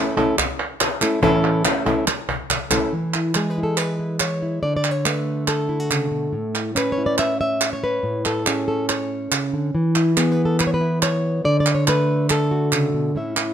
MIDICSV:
0, 0, Header, 1, 5, 480
1, 0, Start_track
1, 0, Key_signature, 3, "major"
1, 0, Tempo, 425532
1, 1390, Time_signature, 4, 2, 24, 8
1, 15269, End_track
2, 0, Start_track
2, 0, Title_t, "Nylon-string guitar"
2, 0, Program_c, 0, 24
2, 0, Note_on_c, 0, 57, 58
2, 0, Note_on_c, 0, 61, 66
2, 0, Note_on_c, 0, 64, 61
2, 0, Note_on_c, 0, 69, 66
2, 178, Note_off_c, 0, 69, 0
2, 184, Note_off_c, 0, 57, 0
2, 185, Note_off_c, 0, 64, 0
2, 188, Note_off_c, 0, 61, 0
2, 191, Note_on_c, 0, 69, 63
2, 198, Note_on_c, 0, 64, 58
2, 207, Note_on_c, 0, 61, 54
2, 212, Note_on_c, 0, 57, 47
2, 419, Note_off_c, 0, 61, 0
2, 420, Note_off_c, 0, 57, 0
2, 422, Note_off_c, 0, 64, 0
2, 423, Note_off_c, 0, 69, 0
2, 1142, Note_on_c, 0, 69, 53
2, 1150, Note_on_c, 0, 64, 55
2, 1159, Note_on_c, 0, 61, 51
2, 1162, Note_on_c, 0, 57, 51
2, 1369, Note_off_c, 0, 57, 0
2, 1373, Note_off_c, 0, 61, 0
2, 1375, Note_on_c, 0, 45, 90
2, 1376, Note_off_c, 0, 69, 0
2, 1377, Note_on_c, 0, 52, 89
2, 1380, Note_off_c, 0, 64, 0
2, 1383, Note_on_c, 0, 57, 91
2, 1387, Note_on_c, 0, 61, 107
2, 1393, Note_on_c, 0, 64, 96
2, 1395, Note_on_c, 0, 69, 105
2, 1842, Note_off_c, 0, 57, 0
2, 1849, Note_off_c, 0, 61, 0
2, 1851, Note_off_c, 0, 45, 0
2, 1852, Note_off_c, 0, 52, 0
2, 1855, Note_on_c, 0, 57, 62
2, 1860, Note_off_c, 0, 64, 0
2, 1862, Note_off_c, 0, 69, 0
2, 1863, Note_on_c, 0, 61, 69
2, 1872, Note_on_c, 0, 64, 68
2, 1874, Note_on_c, 0, 69, 69
2, 2082, Note_off_c, 0, 69, 0
2, 2091, Note_off_c, 0, 57, 0
2, 2092, Note_off_c, 0, 64, 0
2, 2095, Note_off_c, 0, 61, 0
2, 2095, Note_on_c, 0, 69, 56
2, 2106, Note_on_c, 0, 64, 54
2, 2112, Note_on_c, 0, 61, 49
2, 2116, Note_on_c, 0, 57, 50
2, 2326, Note_off_c, 0, 57, 0
2, 2331, Note_off_c, 0, 61, 0
2, 2331, Note_off_c, 0, 64, 0
2, 2331, Note_off_c, 0, 69, 0
2, 3053, Note_on_c, 0, 69, 53
2, 3063, Note_on_c, 0, 64, 55
2, 3070, Note_on_c, 0, 61, 51
2, 3075, Note_on_c, 0, 57, 49
2, 3289, Note_off_c, 0, 69, 0
2, 3294, Note_off_c, 0, 64, 0
2, 3298, Note_off_c, 0, 61, 0
2, 3300, Note_off_c, 0, 57, 0
2, 3303, Note_on_c, 0, 52, 64
2, 3556, Note_on_c, 0, 64, 42
2, 3786, Note_on_c, 0, 56, 62
2, 3793, Note_on_c, 0, 68, 71
2, 3948, Note_on_c, 0, 71, 80
2, 4025, Note_off_c, 0, 64, 0
2, 4039, Note_on_c, 0, 64, 39
2, 4094, Note_off_c, 0, 71, 0
2, 4099, Note_on_c, 0, 69, 72
2, 4257, Note_off_c, 0, 69, 0
2, 4257, Note_on_c, 0, 71, 80
2, 4429, Note_off_c, 0, 68, 0
2, 4493, Note_off_c, 0, 64, 0
2, 4506, Note_on_c, 0, 64, 45
2, 4739, Note_off_c, 0, 71, 0
2, 4743, Note_on_c, 0, 73, 94
2, 4977, Note_off_c, 0, 64, 0
2, 4991, Note_on_c, 0, 64, 42
2, 5195, Note_off_c, 0, 52, 0
2, 5197, Note_off_c, 0, 56, 0
2, 5199, Note_off_c, 0, 64, 0
2, 5214, Note_off_c, 0, 73, 0
2, 5219, Note_on_c, 0, 74, 112
2, 5223, Note_on_c, 0, 50, 67
2, 5361, Note_off_c, 0, 74, 0
2, 5375, Note_on_c, 0, 74, 87
2, 5540, Note_off_c, 0, 74, 0
2, 5540, Note_on_c, 0, 73, 93
2, 5701, Note_on_c, 0, 57, 60
2, 5702, Note_off_c, 0, 73, 0
2, 5702, Note_on_c, 0, 71, 87
2, 6178, Note_off_c, 0, 71, 0
2, 6182, Note_on_c, 0, 69, 74
2, 6417, Note_on_c, 0, 64, 41
2, 6540, Note_off_c, 0, 64, 0
2, 6540, Note_on_c, 0, 66, 40
2, 6660, Note_on_c, 0, 49, 60
2, 6889, Note_off_c, 0, 49, 0
2, 6893, Note_on_c, 0, 47, 64
2, 7131, Note_off_c, 0, 47, 0
2, 7135, Note_on_c, 0, 45, 67
2, 7144, Note_off_c, 0, 66, 0
2, 7146, Note_off_c, 0, 69, 0
2, 7147, Note_off_c, 0, 50, 0
2, 7612, Note_off_c, 0, 57, 0
2, 7617, Note_on_c, 0, 61, 64
2, 7641, Note_on_c, 0, 71, 84
2, 7808, Note_on_c, 0, 73, 95
2, 7871, Note_on_c, 0, 64, 47
2, 7958, Note_off_c, 0, 73, 0
2, 7966, Note_on_c, 0, 74, 90
2, 8107, Note_off_c, 0, 74, 0
2, 8112, Note_on_c, 0, 76, 102
2, 8276, Note_off_c, 0, 71, 0
2, 8341, Note_off_c, 0, 76, 0
2, 8355, Note_on_c, 0, 76, 98
2, 8713, Note_off_c, 0, 76, 0
2, 8720, Note_on_c, 0, 73, 97
2, 8839, Note_on_c, 0, 71, 93
2, 9036, Note_off_c, 0, 61, 0
2, 9047, Note_off_c, 0, 45, 0
2, 9060, Note_on_c, 0, 45, 69
2, 9311, Note_off_c, 0, 73, 0
2, 9316, Note_on_c, 0, 69, 82
2, 9537, Note_off_c, 0, 71, 0
2, 9541, Note_on_c, 0, 68, 86
2, 9558, Note_on_c, 0, 61, 62
2, 9777, Note_off_c, 0, 69, 0
2, 9790, Note_on_c, 0, 69, 75
2, 10030, Note_off_c, 0, 69, 0
2, 10035, Note_on_c, 0, 73, 82
2, 10267, Note_off_c, 0, 68, 0
2, 10503, Note_off_c, 0, 45, 0
2, 10508, Note_on_c, 0, 49, 66
2, 10750, Note_off_c, 0, 49, 0
2, 10752, Note_on_c, 0, 50, 61
2, 10786, Note_off_c, 0, 64, 0
2, 10967, Note_off_c, 0, 61, 0
2, 10989, Note_off_c, 0, 50, 0
2, 10993, Note_on_c, 0, 52, 65
2, 10994, Note_off_c, 0, 73, 0
2, 11237, Note_on_c, 0, 64, 43
2, 11467, Note_on_c, 0, 68, 74
2, 11473, Note_on_c, 0, 59, 63
2, 11636, Note_on_c, 0, 71, 82
2, 11787, Note_off_c, 0, 71, 0
2, 11792, Note_on_c, 0, 69, 75
2, 11953, Note_off_c, 0, 69, 0
2, 11965, Note_on_c, 0, 71, 89
2, 12031, Note_off_c, 0, 71, 0
2, 12036, Note_on_c, 0, 73, 78
2, 12109, Note_off_c, 0, 73, 0
2, 12111, Note_off_c, 0, 68, 0
2, 12114, Note_on_c, 0, 71, 84
2, 12179, Note_off_c, 0, 64, 0
2, 12193, Note_on_c, 0, 64, 44
2, 12435, Note_off_c, 0, 71, 0
2, 12439, Note_on_c, 0, 73, 96
2, 12885, Note_off_c, 0, 64, 0
2, 12886, Note_off_c, 0, 52, 0
2, 12886, Note_off_c, 0, 59, 0
2, 12911, Note_on_c, 0, 50, 69
2, 12912, Note_off_c, 0, 73, 0
2, 12917, Note_on_c, 0, 74, 111
2, 13076, Note_off_c, 0, 74, 0
2, 13088, Note_on_c, 0, 74, 93
2, 13242, Note_off_c, 0, 74, 0
2, 13249, Note_on_c, 0, 73, 90
2, 13398, Note_on_c, 0, 57, 62
2, 13402, Note_off_c, 0, 73, 0
2, 13408, Note_on_c, 0, 71, 91
2, 13878, Note_off_c, 0, 71, 0
2, 13882, Note_on_c, 0, 69, 77
2, 14115, Note_on_c, 0, 66, 46
2, 14354, Note_on_c, 0, 49, 67
2, 14590, Note_off_c, 0, 49, 0
2, 14595, Note_on_c, 0, 47, 59
2, 14808, Note_off_c, 0, 66, 0
2, 14827, Note_off_c, 0, 47, 0
2, 14832, Note_on_c, 0, 45, 70
2, 14835, Note_off_c, 0, 50, 0
2, 14837, Note_off_c, 0, 57, 0
2, 14840, Note_off_c, 0, 69, 0
2, 14842, Note_on_c, 0, 61, 47
2, 14848, Note_on_c, 0, 64, 48
2, 14860, Note_on_c, 0, 76, 48
2, 15079, Note_off_c, 0, 64, 0
2, 15084, Note_on_c, 0, 64, 46
2, 15269, Note_off_c, 0, 45, 0
2, 15269, Note_off_c, 0, 61, 0
2, 15269, Note_off_c, 0, 64, 0
2, 15269, Note_off_c, 0, 76, 0
2, 15269, End_track
3, 0, Start_track
3, 0, Title_t, "Cajon"
3, 200, Note_on_c, 9, 36, 81
3, 313, Note_off_c, 9, 36, 0
3, 435, Note_on_c, 9, 36, 98
3, 435, Note_on_c, 9, 38, 35
3, 547, Note_off_c, 9, 36, 0
3, 547, Note_off_c, 9, 38, 0
3, 683, Note_on_c, 9, 38, 34
3, 796, Note_off_c, 9, 38, 0
3, 914, Note_on_c, 9, 38, 100
3, 1027, Note_off_c, 9, 38, 0
3, 1384, Note_on_c, 9, 36, 110
3, 1497, Note_off_c, 9, 36, 0
3, 1861, Note_on_c, 9, 38, 110
3, 1974, Note_off_c, 9, 38, 0
3, 2104, Note_on_c, 9, 36, 90
3, 2216, Note_off_c, 9, 36, 0
3, 2342, Note_on_c, 9, 38, 77
3, 2454, Note_off_c, 9, 38, 0
3, 2580, Note_on_c, 9, 36, 76
3, 2692, Note_off_c, 9, 36, 0
3, 2821, Note_on_c, 9, 36, 84
3, 2934, Note_off_c, 9, 36, 0
3, 3056, Note_on_c, 9, 36, 99
3, 3169, Note_off_c, 9, 36, 0
3, 15269, End_track
4, 0, Start_track
4, 0, Title_t, "Muted nylon-string guitar strokes"
4, 428, Note_on_c, 9, 29, 67
4, 540, Note_off_c, 9, 29, 0
4, 2337, Note_on_c, 9, 29, 72
4, 2450, Note_off_c, 9, 29, 0
4, 15269, End_track
5, 0, Start_track
5, 0, Title_t, "Drums"
5, 436, Note_on_c, 9, 39, 86
5, 549, Note_off_c, 9, 39, 0
5, 908, Note_on_c, 9, 39, 90
5, 1021, Note_off_c, 9, 39, 0
5, 1146, Note_on_c, 9, 39, 83
5, 1259, Note_off_c, 9, 39, 0
5, 1859, Note_on_c, 9, 39, 83
5, 1972, Note_off_c, 9, 39, 0
5, 2339, Note_on_c, 9, 39, 89
5, 2452, Note_off_c, 9, 39, 0
5, 2823, Note_on_c, 9, 39, 84
5, 2936, Note_off_c, 9, 39, 0
5, 3057, Note_on_c, 9, 39, 88
5, 3170, Note_off_c, 9, 39, 0
5, 3539, Note_on_c, 9, 39, 61
5, 3652, Note_off_c, 9, 39, 0
5, 3773, Note_on_c, 9, 39, 80
5, 3886, Note_off_c, 9, 39, 0
5, 4255, Note_on_c, 9, 39, 77
5, 4368, Note_off_c, 9, 39, 0
5, 4735, Note_on_c, 9, 39, 84
5, 4848, Note_off_c, 9, 39, 0
5, 5461, Note_on_c, 9, 39, 62
5, 5574, Note_off_c, 9, 39, 0
5, 5704, Note_on_c, 9, 39, 81
5, 5817, Note_off_c, 9, 39, 0
5, 6177, Note_on_c, 9, 39, 75
5, 6289, Note_off_c, 9, 39, 0
5, 6667, Note_on_c, 9, 39, 85
5, 6780, Note_off_c, 9, 39, 0
5, 7389, Note_on_c, 9, 39, 62
5, 7502, Note_off_c, 9, 39, 0
5, 7630, Note_on_c, 9, 39, 78
5, 7743, Note_off_c, 9, 39, 0
5, 8099, Note_on_c, 9, 39, 78
5, 8212, Note_off_c, 9, 39, 0
5, 8586, Note_on_c, 9, 39, 87
5, 8699, Note_off_c, 9, 39, 0
5, 9309, Note_on_c, 9, 39, 70
5, 9422, Note_off_c, 9, 39, 0
5, 9549, Note_on_c, 9, 39, 84
5, 9661, Note_off_c, 9, 39, 0
5, 10029, Note_on_c, 9, 39, 79
5, 10142, Note_off_c, 9, 39, 0
5, 10512, Note_on_c, 9, 39, 89
5, 10625, Note_off_c, 9, 39, 0
5, 11229, Note_on_c, 9, 39, 67
5, 11342, Note_off_c, 9, 39, 0
5, 11473, Note_on_c, 9, 39, 90
5, 11585, Note_off_c, 9, 39, 0
5, 11951, Note_on_c, 9, 39, 76
5, 12064, Note_off_c, 9, 39, 0
5, 12434, Note_on_c, 9, 39, 89
5, 12547, Note_off_c, 9, 39, 0
5, 13155, Note_on_c, 9, 39, 71
5, 13268, Note_off_c, 9, 39, 0
5, 13393, Note_on_c, 9, 39, 88
5, 13506, Note_off_c, 9, 39, 0
5, 13869, Note_on_c, 9, 39, 86
5, 13982, Note_off_c, 9, 39, 0
5, 14351, Note_on_c, 9, 39, 88
5, 14464, Note_off_c, 9, 39, 0
5, 15077, Note_on_c, 9, 39, 74
5, 15190, Note_off_c, 9, 39, 0
5, 15269, End_track
0, 0, End_of_file